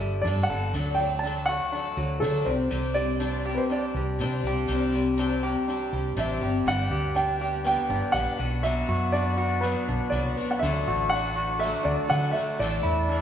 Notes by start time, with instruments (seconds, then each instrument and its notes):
Already playing: twelve-string acoustic guitar G3 B3 D4 A4, clean electric guitar A4, grand piano E5
0.00 fingered electric bass G1, clean electric guitar G3
0.22 fingered electric bass G2, twelve-string acoustic guitar G3, grand piano D5
0.27 twelve-string acoustic guitar B3 D4 A4
0.43 grand piano F#5
0.48 fingered electric bass G1, twelve-string acoustic guitar D4 A4
0.53 twelve-string acoustic guitar B3
0.73 fingered electric bass D2, twelve-string acoustic guitar D3 F#3 A3 D4 A4
0.95 grand piano G5
1.00 clean electric guitar F#3, twelve-string acoustic guitar A3 D4 A4
1.19 grand piano A5
1.24 twelve-string acoustic guitar D3 F#3 A3 D4 A4
1.46 clean electric guitar F#4, twelve-string acoustic guitar A4, grand piano F#5
1.51 twelve-string acoustic guitar A3 D4
1.75 twelve-string acoustic guitar F#3 A3 D4 A4
1.97 fingered electric bass D2, clean electric guitar F#3
2.20 fingered electric bass D3, twelve-string acoustic guitar D3 F#3, grand piano A4
2.24 twelve-string acoustic guitar A3 D4 A4
2.45 fingered electric bass C2, clean electric guitar C3, twelve-string acoustic guitar D4 G4, grand piano C5
2.49 twelve-string acoustic guitar C4
2.71 fingered electric bass C2, twelve-string acoustic guitar C3 G3 C4 D4 G4
2.94 clean electric guitar G3, twelve-string acoustic guitar C4 D4 G4, grand piano D5
3.20 twelve-string acoustic guitar C3 G3 C4 D4 G4
3.45 twelve-string acoustic guitar D4 G4
3.49 twelve-string acoustic guitar C4
3.55 grand piano B4 C5
3.69 twelve-string acoustic guitar G3 C4 D4 G4, grand piano D5
3.94 fingered electric bass C2, clean electric guitar G3
4.19 twelve-string acoustic guitar C3 G3 C4 D4 G4, fingered electric bass C3
4.43 fingered electric bass C2, twelve-string acoustic guitar C4 D4 G4
4.68 fingered electric bass C2, twelve-string acoustic guitar C3 G3 C4 D4 G4
4.72 clean electric guitar C3
4.92 clean electric guitar G3, twelve-string acoustic guitar C4 D4 G4
5.18 twelve-string acoustic guitar C3 G3 C4 D4 G4
5.43 twelve-string acoustic guitar C4 D4 G4
5.68 twelve-string acoustic guitar G3 C4 D4 G4
5.93 fingered electric bass C2, clean electric guitar G3
6.16 fingered electric bass A1, twelve-string acoustic guitar C3 G3 C4 D4 G4, grand piano E5
6.41 fingered electric bass G1, twelve-string acoustic guitar D4 G4
6.45 twelve-string acoustic guitar C4
6.65 fingered electric bass G1, clean electric guitar G2, twelve-string acoustic guitar G3 B3 D4 G4, harmonium D4 G4 B4, grand piano F#5
6.90 fingered electric bass D2, clean electric guitar G4
7.15 twelve-string acoustic guitar G3 B3 D4 G4, grand piano G5
7.40 twelve-string acoustic guitar D4 G4
7.44 twelve-string acoustic guitar B3
7.64 twelve-string acoustic guitar G3 B3 D4 G4, grand piano G5
7.89 fingered electric bass G1, clean electric guitar D4
8.12 fingered electric bass A#1, twelve-string acoustic guitar G3 B3 D4, grand piano F#5
8.17 twelve-string acoustic guitar G4
8.38 fingered electric bass B1, clean electric guitar B2, twelve-string acoustic guitar B3 D4 F#4, harmonium D4 F#4 B4
8.63 twelve-string acoustic guitar B2 F#3 B3 D4 F#4, grand piano E5
8.89 fingered electric bass F#2, clean electric guitar F#4
9.12 twelve-string acoustic guitar F#3 B3 D4, grand piano D5
9.17 twelve-string acoustic guitar F#4
9.38 clean electric guitar F#4
9.61 twelve-string acoustic guitar B2 F#3 B3 D4 F#4, grand piano B4
9.88 fingered electric bass B1, clean electric guitar D4
10.10 fingered electric bass C2, twelve-string acoustic guitar F#3 B3, grand piano D5
10.14 twelve-string acoustic guitar D4 F#4
10.37 clean electric guitar B3, twelve-string acoustic guitar D4 F#4
10.41 twelve-string acoustic guitar B3
10.51 grand piano F#5
10.59 fingered electric bass D2, twelve-string acoustic guitar D3, harmonium D4 F#4 A4, grand piano E5
10.64 twelve-string acoustic guitar F#3 A3 D4 F#4
10.87 fingered electric bass A1, clean electric guitar F#4
11.10 twelve-string acoustic guitar F#3, clean electric guitar D4, grand piano F#5
11.15 twelve-string acoustic guitar A3 D4 F#4
11.36 clean electric guitar F#4
11.59 twelve-string acoustic guitar D3 F#3, clean electric guitar A3, grand piano E5
11.63 twelve-string acoustic guitar A3 D4 F#4
11.83 fingered electric bass D2, clean electric guitar D4, grand piano D5
12.09 clean electric guitar D3, fingered electric bass D3, twelve-string acoustic guitar F#3 A3, grand piano F#5
12.13 twelve-string acoustic guitar D4 F#4
12.31 clean electric guitar A3, grand piano E5
12.36 twelve-string acoustic guitar A3 D4 F#4
12.59 fingered electric bass A1, twelve-string acoustic guitar A2 D3 E3 D4, harmonium D4 E4 A4, grand piano D5
12.63 twelve-string acoustic guitar A3 A4
12.83 fingered electric bass E2, clean electric guitar E4
13.08 twelve-string acoustic guitar E3, clean electric guitar D4
13.13 twelve-string acoustic guitar A3 D4 A4